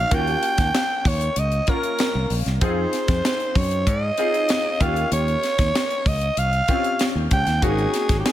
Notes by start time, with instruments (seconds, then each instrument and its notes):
Already playing: grand piano A#3 C#4 D#4 F#4, alto saxophone F5
0.11 fingered electric bass D#2, grand piano A#3 C#4 F4 F#4, alto saxophone G5, kick, closed hi-hat
0.19 grand piano G4
0.27 closed hi-hat
0.43 closed hi-hat
0.58 fingered electric bass D#2, kick, snare, closed hi-hat
0.74 snare, closed hi-hat
1.05 fingered electric bass D#2, alto saxophone C#5, kick, open hi-hat
1.21 closed hi-hat
1.36 fingered electric bass C#2, alto saxophone D#5, closed hi-hat
1.52 closed hi-hat
1.67 grand piano A#3 C#4 F4 A#4, alto saxophone A#4, kick, closed hi-hat
1.83 closed hi-hat
1.99 snare, closed hi-hat
2.15 fingered electric bass C2
2.30 fingered electric bass A#1, open hi-hat
2.46 fingered electric bass C2, snare, closed hi-hat
2.61 fingered electric bass F2, grand piano C4 D#4 F4 G#4, alto saxophone C5, kick, closed hi-hat
2.93 snare, closed hi-hat
3.08 fingered electric bass F2, kick, snare, closed hi-hat
3.25 snare, closed hi-hat
3.40 closed hi-hat
3.55 fingered electric bass F#2, alto saxophone C#5, kick, open hi-hat
3.71 closed hi-hat
3.87 fingered electric bass G#2, alto saxophone D#5, kick, closed hi-hat
4.17 grand piano C4 D#4 F4 G#4, closed hi-hat
4.34 closed hi-hat
4.49 snare, closed hi-hat
4.80 fingered electric bass D#2, grand piano A#3 C#4 F4 G4, alto saxophone F5, kick, closed hi-hat
4.96 closed hi-hat
5.12 fingered electric bass D#2, alto saxophone C#5, closed hi-hat
5.28 closed hi-hat
5.43 snare, closed hi-hat
5.58 fingered electric bass D#2, kick, snare, closed hi-hat
5.75 snare, closed hi-hat
5.90 closed hi-hat
6.06 fingered electric bass C#2, alto saxophone D#5, kick, open hi-hat
6.21 closed hi-hat
6.37 fingered electric bass C2, alto saxophone F5, closed hi-hat
6.53 closed hi-hat
6.68 grand piano C4 C#4 F4 G4, kick, closed hi-hat
6.84 closed hi-hat
6.99 snare, closed hi-hat
7.15 fingered electric bass D#2
7.31 fingered electric bass C#2, alto saxophone G5, kick, closed hi-hat
7.46 fingered electric bass D#2, snare, closed hi-hat
7.62 fingered electric bass G#1, grand piano A#3 C#4 D#4 F#4, alto saxophone G#4, kick, closed hi-hat
7.78 closed hi-hat
7.94 snare, closed hi-hat
8.09 fingered electric bass G#1, kick, snare, closed hi-hat
8.20 alto saxophone G4
8.26 alto saxophone G#4, snare, closed hi-hat